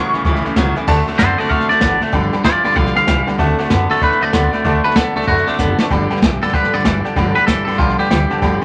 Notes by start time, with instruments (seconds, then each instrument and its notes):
Already playing: upright bass A1, clean electric guitar A2 F#3, honky-tonk piano C#3 G3 B3 C#6, steel-string acoustic guitar E3 G3 C#4 E4
0.12 upright bass A1, clean electric guitar A2 E3, steel-string acoustic guitar G3 C#4 E4, snare
0.24 upright bass C#2, steel-string acoustic guitar A2 E3 G3 C#4 E4, clean electric guitar A2 E3, kick, snare
0.35 snare
0.45 clean electric guitar A2 E3, steel-string acoustic guitar G3 C#4 E4, snare
0.55 upright bass C#2, clean electric guitar A2 F#3, honky-tonk piano C#3 G3 B3, steel-string acoustic guitar E3 G3 C#4 E4, kick, snare, hi-hat pedal
0.76 clean electric guitar A2 E3, steel-string acoustic guitar G3 C#4 E4, snare
0.87 upright bass D2, steel-string acoustic guitar D3 A3 C4 F#4, clean electric guitar D3 A3, honky-tonk piano D5 F#5 A5, kick, snare, crash
1.06 clean electric guitar D3 A3, steel-string acoustic guitar A3 C4 F#4, honky-tonk piano D5 F#5 A5, snare
1.14 snare
1.18 upright bass F#2, steel-string acoustic guitar D3 A3 C4, clean electric guitar D3 B3 A4 C5, honky-tonk piano D5 F#5 A5, kick, snare, hi-hat pedal
1.38 clean electric guitar D3 A3 F#4 D5, steel-string acoustic guitar A3 C4 F#4, honky-tonk piano D5 F#5 A5, snare
1.44 snare
1.49 upright bass D2, steel-string acoustic guitar D3 A3 C4 F#4, clean electric guitar D3 A3 A4 F5, honky-tonk piano D5 F#5 A5, kick, snare
1.60 snare
1.69 upright bass D2, clean electric guitar D3 A3 D5, steel-string acoustic guitar A3 C4 F#4, honky-tonk piano D5 F#5 A5, snare
1.76 snare
1.81 upright bass A1, steel-string acoustic guitar D3 A3 C4 F#4, clean electric guitar D3 B3, honky-tonk piano D5 F#5 A5, kick, snare, hi-hat pedal
2.00 clean electric guitar D3 A3, steel-string acoustic guitar A3 C4 F#4, honky-tonk piano D5 F#5 A5, muted upright bass stroke, snare
2.12 upright bass G1, steel-string acoustic guitar G2 D3 F3 G3 B3 G4, clean electric guitar G2 D3, honky-tonk piano D5 G5 B5, kick, snare
2.32 clean electric guitar G2 D3, steel-string acoustic guitar F3 G3 B3 G4, honky-tonk piano D5 G5 B5, snare
2.44 upright bass G1, clean electric guitar G2 E3 F4 D5, steel-string acoustic guitar F3 G3 B3 G4, honky-tonk piano D5 G5 B5, kick, snare, hi-hat pedal
2.63 upright bass G1, clean electric guitar G2 D3 F4 D5, steel-string acoustic guitar F3 G3 B3 G4, honky-tonk piano D5 G5 B5, snare
2.70 snare
2.75 upright bass B1, steel-string acoustic guitar G2 D3 F3 G3 B3 G4, clean electric guitar G2 D3 A4 F5, honky-tonk piano D5 G5 B5, kick, snare
2.86 snare
2.94 clean electric guitar G2 D3 F5, steel-string acoustic guitar F3 G3 B3 G4, honky-tonk piano D5 G5 B5, snare
3.06 upright bass C2, clean electric guitar G2 E3, steel-string acoustic guitar F3 G3 B3 G4, honky-tonk piano D5 G5 B5, kick, snare, hi-hat pedal
3.27 clean electric guitar G2 D3, steel-string acoustic guitar F3 G3 B3 G4, honky-tonk piano D5 G5 B5, muted upright bass stroke, snare
3.38 upright bass D2, steel-string acoustic guitar D3 A3 C4 F#4, clean electric guitar D3 A3, honky-tonk piano D5 F#5 A5, kick, snare
3.58 clean electric guitar D3 A3, steel-string acoustic guitar A3 C4 F#4, honky-tonk piano D5 F#5 A5, snare
3.64 snare
3.69 upright bass F#2, steel-string acoustic guitar D3 A3 C4 F#4, clean electric guitar D3 B3, honky-tonk piano D5 F#5 A5, kick, snare, hi-hat pedal
3.89 clean electric guitar D3 A3 A4, steel-string acoustic guitar A3 C4 F#4, honky-tonk piano D5 F#5 A5, muted upright bass stroke, snare
3.96 snare
4.01 upright bass D2, clean electric guitar D3 A3 B4, steel-string acoustic guitar D3 A3 C4 F#4, honky-tonk piano D5 F#5 B5, kick, snare
4.11 snare
4.21 upright bass D2, clean electric guitar D3 A3 D5, steel-string acoustic guitar A3 C4 F#4, honky-tonk piano D5 F#5 A5, snare
4.32 upright bass D2, steel-string acoustic guitar D3 A3 C4 F#4, clean electric guitar D3 B3, honky-tonk piano D5 F#5 C6, kick, snare, hi-hat pedal
4.53 clean electric guitar D3 A3, steel-string acoustic guitar A3 C4 F#4, honky-tonk piano D5 F#5 B5, snare
4.64 upright bass D2, steel-string acoustic guitar D3 A3 C4 F#4, clean electric guitar D3 A3, honky-tonk piano D5 F#5 A5, kick, snare
4.84 clean electric guitar D3 A3 B4, steel-string acoustic guitar A3 C4 F#4, honky-tonk piano D5 F#5 A5, snare
4.90 snare
4.95 upright bass D2, steel-string acoustic guitar D3 A3 C4, clean electric guitar D3 B3 A4, honky-tonk piano D5 F#5 A5, kick, snare, hi-hat pedal
5.15 upright bass D2, clean electric guitar D3 A3 A4, steel-string acoustic guitar A3 C4 F#4, honky-tonk piano D5 F#5 A5, snare
5.22 snare
5.27 upright bass F#2, clean electric guitar D3 A3 F#4, steel-string acoustic guitar D3 A3 C4 F#4, honky-tonk piano D5 F#5 B5, kick, snare
5.37 snare
5.47 clean electric guitar D3 A3 D4, steel-string acoustic guitar C4 F#4, honky-tonk piano D5 F#5 A5, muted upright bass stroke, snare
5.51 steel-string acoustic guitar A3, snare
5.59 upright bass F#1, clean electric guitar D3 B3, steel-string acoustic guitar D3 A3 C4 F#4, honky-tonk piano D5 F#5 A5, kick, snare, hi-hat pedal
5.78 clean electric guitar D3 A3, steel-string acoustic guitar A3 C4 F#4, honky-tonk piano D5 F#5 A5, muted upright bass stroke, snare
5.90 upright bass G1, clean electric guitar G2 D3, steel-string acoustic guitar G2 D3 F3 G3 B3 G4, honky-tonk piano D5 G5 B5, kick, snare
6.10 clean electric guitar G2 D3, steel-string acoustic guitar F3 G3 B3 G4, honky-tonk piano D5 G5 B5, muted upright bass stroke, snare
6.16 snare
6.22 upright bass B1, clean electric guitar G2 E3, steel-string acoustic guitar F3 G3 B3 G4, honky-tonk piano D5 G5 D6, kick, snare, hi-hat pedal
6.42 clean electric guitar G2 D3 A4, steel-string acoustic guitar F3 G3 B3 G4, honky-tonk piano D5 G5 B5, snare
6.48 snare
6.53 upright bass G1, clean electric guitar G2 D3 B4, steel-string acoustic guitar G2 D3 F3 G3 B3 G4, honky-tonk piano D5 G5 B5, kick, snare
6.63 snare
6.73 upright bass G1, clean electric guitar G2 D3 D5, steel-string acoustic guitar F3 G3 B3 G4, honky-tonk piano D5 G5 B5, snare
6.79 snare
6.85 upright bass G1, clean electric guitar G2 E3, steel-string acoustic guitar F3 G3 B3 G4, honky-tonk piano D5 G5 B5, kick, snare, hi-hat pedal
7.04 clean electric guitar G2 D3, steel-string acoustic guitar F3 G3 B3 G4, honky-tonk piano D5 G5 A5, snare
7.16 upright bass G1, clean electric guitar G2 D3, steel-string acoustic guitar G2 D3 F3 G3 B3 G4, honky-tonk piano D5 G5 B5, kick, snare
7.35 clean electric guitar G2 D3 B4, steel-string acoustic guitar G3 B3 G4, honky-tonk piano D5 G5 B5, muted upright bass stroke, snare
7.40 steel-string acoustic guitar F3
7.47 upright bass G1, clean electric guitar G2 E3 A4, steel-string acoustic guitar F3 G3 B3, honky-tonk piano D5 G5 B5, kick, snare, hi-hat pedal
7.51 steel-string acoustic guitar G4
7.65 upright bass G1, clean electric guitar G2 D3 A4, steel-string acoustic guitar B3 G4, honky-tonk piano D5 G5 B5, snare
7.69 steel-string acoustic guitar F3 G3
7.73 snare
7.78 upright bass B1, clean electric guitar G2 D3 F4, steel-string acoustic guitar G2 D3 F3 G3 B3 G4, honky-tonk piano D5 G5 B5, kick, snare
7.89 snare
7.98 clean electric guitar G2 D3 G4, steel-string acoustic guitar F3 G3 B3 G4, honky-tonk piano D5 G5 B5, snare
8.05 snare
8.10 upright bass D2, clean electric guitar G2 E3, steel-string acoustic guitar F3 G3 B3 G4, honky-tonk piano D5 G5 B5, kick, snare, hi-hat pedal
8.29 clean electric guitar G2 D3, steel-string acoustic guitar F3 G3 B3 G4, honky-tonk piano D5 G5 A5, snare
8.41 upright bass G1, steel-string acoustic guitar G2 D3 F3 G3 B3 G4, clean electric guitar G2 D3, honky-tonk piano D5 G5 B5, kick, snare
8.61 clean electric guitar G2, steel-string acoustic guitar G4, honky-tonk piano G5